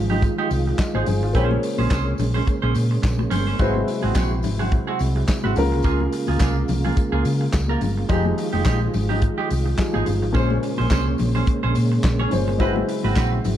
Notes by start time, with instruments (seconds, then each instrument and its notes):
Already playing: fingered electric bass G#1, tonewheel organ D#3 F3 G#3 F4, grand piano F3 D#4 G4 G#4
0.10 clean electric guitar G#3 D#4 G4, low conga
0.22 muted clean electric guitar stroke, kick, closed hi-hat, tambourine, muted conga
0.38 clean electric guitar G#3 D#4 G4, muted conga
0.50 fingered electric bass C2, muted clean electric guitar stroke, open hi-hat, tambourine
0.67 muted clean electric guitar stroke
0.78 grand piano D#5, muted clean electric guitar stroke, kick, snare, clap, closed hi-hat, tambourine
0.94 fingered electric bass G#1, clean electric guitar G#3 D#4 G#4, grand piano C5, muted conga, high conga
1.06 fingered electric bass G1, grand piano G#4, muted clean electric guitar stroke, open hi-hat, tambourine, low conga
1.23 fingered electric bass G#1, grand piano F4, muted clean electric guitar stroke
1.33 fingered electric bass A#1, tonewheel organ C#3 G#3 A#3 C#4, grand piano A#3 G#4 C5 C#5, clean electric guitar C#4 G#4 C5, kick, closed hi-hat, tambourine, muted conga
1.51 muted clean electric guitar stroke, muted conga, high conga
1.63 muted clean electric guitar stroke, open hi-hat, tambourine
1.78 fingered electric bass A#1, clean electric guitar C#4 G#4 C5, high conga
1.90 fingered electric bass C2, clean electric guitar C#4 G#4 C5, kick, snare, clap, closed hi-hat, tambourine
2.07 muted clean electric guitar stroke
2.18 fingered electric bass A#1, muted clean electric guitar stroke, open hi-hat, tambourine, low conga
2.34 clean electric guitar C#4 G#4 C5, low conga
2.47 muted clean electric guitar stroke, kick, closed hi-hat, tambourine
2.62 fingered electric bass A#1, clean electric guitar C#4 G#4 C5, muted conga
2.75 fingered electric bass A#2, muted clean electric guitar stroke, open hi-hat, tambourine
2.91 muted clean electric guitar stroke
3.03 fingered electric bass A#1, muted clean electric guitar stroke, kick, snare, clap, closed hi-hat, tambourine, muted conga
3.19 muted clean electric guitar stroke, muted conga, high conga
3.30 fingered electric bass G1, clean electric guitar C#4 G#4 C5, open hi-hat, tambourine, low conga
3.47 clean electric guitar C#4 G#4 C5
3.59 fingered electric bass G#1, tonewheel organ C3 F#3 G#3 E4, grand piano G#3 E4 F#4 B4 C5, clean electric guitar C4 F#4 G#4, kick, closed hi-hat, tambourine, muted conga
3.74 muted clean electric guitar stroke, muted conga, high conga
3.87 muted clean electric guitar stroke, open hi-hat, tambourine
4.02 fingered electric bass G#1, clean electric guitar C4 F#4 G#4, high conga
4.15 fingered electric bass A#1, clean electric guitar C4 F#4 G#4, kick, snare, clap, closed hi-hat, tambourine
4.32 muted clean electric guitar stroke
4.43 fingered electric bass G#1, muted clean electric guitar stroke, open hi-hat, tambourine, low conga
4.59 clean electric guitar C4 F#4 G#4, low conga
4.72 muted clean electric guitar stroke, kick, closed hi-hat, muted conga
4.87 clean electric guitar C4 F#4 G#4, muted conga
4.99 fingered electric bass C2, muted clean electric guitar stroke, open hi-hat, tambourine
5.16 muted clean electric guitar stroke
5.28 muted clean electric guitar stroke, kick, snare, clap, closed hi-hat, tambourine, muted conga
5.44 fingered electric bass G#1, clean electric guitar C4 F#4 B4, muted conga, high conga
5.56 fingered electric bass C#2, grand piano C#3 C#4 F4 A#4, tonewheel organ C#3 A#3 F4, muted clean electric guitar stroke, open hi-hat, tambourine, low conga
5.72 fingered electric bass C2, muted clean electric guitar stroke
5.82 fingered electric bass C#2, clean electric guitar A#3 F4 G#4, kick, closed hi-hat, tambourine
6.00 muted clean electric guitar stroke, muted conga, high conga
6.13 muted clean electric guitar stroke, open hi-hat
6.27 fingered electric bass C#2, clean electric guitar A#3 F4 G#4, high conga
6.39 fingered electric bass C2, clean electric guitar A#3 F4 G#4, kick, snare, clap, closed hi-hat, tambourine, muted conga
6.56 muted clean electric guitar stroke
6.68 fingered electric bass C2, muted clean electric guitar stroke, open hi-hat, tambourine, low conga
6.85 clean electric guitar A#3 F4 G#4, low conga
6.97 muted clean electric guitar stroke, kick, closed hi-hat, tambourine, muted conga
7.12 fingered electric bass C#2, clean electric guitar A#3 F4 G#4
7.25 fingered electric bass C#3, muted clean electric guitar stroke, open hi-hat, tambourine
7.41 muted clean electric guitar stroke
7.53 fingered electric bass C#2, muted clean electric guitar stroke, kick, snare, clap, closed hi-hat, tambourine, muted conga
7.68 clean electric guitar A#3 F4 A#4, high conga
7.81 fingered electric bass G1, muted clean electric guitar stroke, open hi-hat, tambourine, low conga
7.97 muted clean electric guitar stroke
8.08 fingered electric bass F1, tonewheel organ D#3 F3 F4, grand piano F3 D#4 G4 G#4, clean electric guitar G#3 D#4 G4, kick, closed hi-hat, tambourine, muted conga
8.25 muted clean electric guitar stroke, muted conga, high conga
8.38 muted clean electric guitar stroke, open hi-hat, tambourine
8.53 fingered electric bass F1, clean electric guitar G#3 D#4 G4, high conga
8.65 fingered electric bass A#1, clean electric guitar G#3 D#4 G4, kick, snare, clap, closed hi-hat, tambourine, muted conga
8.81 muted clean electric guitar stroke, muted conga
8.93 fingered electric bass G#1, muted clean electric guitar stroke, open hi-hat, tambourine, low conga
9.09 clean electric guitar G#3 D#4 G4, low conga
9.22 muted clean electric guitar stroke, kick, closed hi-hat, muted conga
9.38 clean electric guitar G#3 D#4 G4
9.50 fingered electric bass C2, muted clean electric guitar stroke, open hi-hat, tambourine
9.66 muted clean electric guitar stroke
9.78 grand piano F3 D#4 G4 G#4, muted clean electric guitar stroke, kick, snare, clap, closed hi-hat, tambourine, muted conga
9.93 fingered electric bass G#1, clean electric guitar G#3 D#4 G#4, high conga
10.06 fingered electric bass G1, muted clean electric guitar stroke, open hi-hat, tambourine, low conga
10.22 fingered electric bass G#1, muted clean electric guitar stroke
10.33 fingered electric bass A#1, grand piano A#2 G#3 C#4 C5, tonewheel organ C#3 G#3 A#3 C#4, clean electric guitar C#4 G#4 C5, kick, closed hi-hat, tambourine, muted conga
10.50 muted clean electric guitar stroke, muted conga, high conga
10.63 muted clean electric guitar stroke, open hi-hat, tambourine
10.77 fingered electric bass A#1, clean electric guitar C#4 G#4 C5, high conga
10.90 fingered electric bass C2, clean electric guitar C#4 G#4 C5, kick, snare, clap, closed hi-hat, tambourine
11.07 muted clean electric guitar stroke, muted conga
11.18 fingered electric bass A#1, muted clean electric guitar stroke, open hi-hat, tambourine, low conga
11.35 clean electric guitar C#4 G#4 C5, low conga
11.47 muted clean electric guitar stroke, kick, closed hi-hat
11.63 fingered electric bass A#1, clean electric guitar C#4 G#4 C5
11.75 fingered electric bass A#2, muted clean electric guitar stroke, open hi-hat, tambourine
11.92 muted clean electric guitar stroke
12.04 fingered electric bass A#1, muted clean electric guitar stroke, kick, snare, clap, closed hi-hat, tambourine, muted conga
12.19 clean electric guitar C#4 G#4 C#5, muted conga, high conga
12.31 fingered electric bass G1, grand piano A#2 G#3 C#4 C5, muted clean electric guitar stroke, open hi-hat, tambourine, low conga
12.48 muted clean electric guitar stroke
12.58 fingered electric bass G#1, tonewheel organ F#3 E4, grand piano G#3 E4 F#4 B4 C5, clean electric guitar C4 F#4 B4, kick, closed hi-hat, tambourine, muted conga
12.76 muted clean electric guitar stroke, muted conga, high conga
12.88 muted clean electric guitar stroke, open hi-hat, tambourine
13.03 fingered electric bass G#1, clean electric guitar C4 F#4 B4, high conga
13.16 fingered electric bass A#1, clean electric guitar C4 F#4 B4, kick, snare, clap, closed hi-hat, tambourine, muted conga
13.32 muted clean electric guitar stroke
13.44 fingered electric bass G#1, muted clean electric guitar stroke, open hi-hat, tambourine, low conga